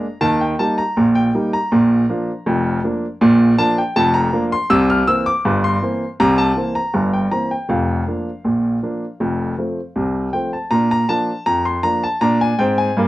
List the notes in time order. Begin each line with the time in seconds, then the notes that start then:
Already playing: A#5
0.21 D#2 D#3 A5
0.41 G5
0.59 G3 A#3 D#4 A5
0.78 A#5
0.97 A#1 A#2
1.15 G5
1.34 G3 A#3 D#4
1.53 A#5
1.72 A#1 A#2
2.09 F3 A#3 D4
2.46 F1 F2
2.84 F3 A#3 D4
3.21 A#1 A#2
3.58 F3 A#3 D4 A5
3.78 G5
3.96 F1 F2 A5
4.14 A#5
4.33 F3 A#3 D4
4.52 C6
4.70 C2 C3 E6
4.90 F6
5.07 E3 A#3 C4 E6
5.26 D6
5.45 G1 G2
5.64 C6
5.82 E3 A#3 C4
6.20 C2 C3 A#5
6.38 A5
6.57 E3 A#3 C4
6.75 A#5
6.94 G1 G2
7.13 G5
7.31 E3 A#3 C4 A#5
7.51 G5
7.69 F1 F2 F5
8.07 F3 A#3 D4
8.44 A#1 A#2
8.83 F3 A#3 D4
9.20 F1 F2
9.58 F3 A3 C4
9.96 C2 C3
10.33 F3 A3 C4 G5
10.53 A5
10.71 A#2 D4 A#5
10.91 A#5
11.09 F3 A#3 D4 A5
11.46 F2 A#5
11.65 C6
11.83 F3 A#3 D4 A#5
12.03 A5
12.21 A#2 D4 A#5
12.41 G#5
12.59 G#2 C4 G5
12.78 G#5
12.97 G2 A#3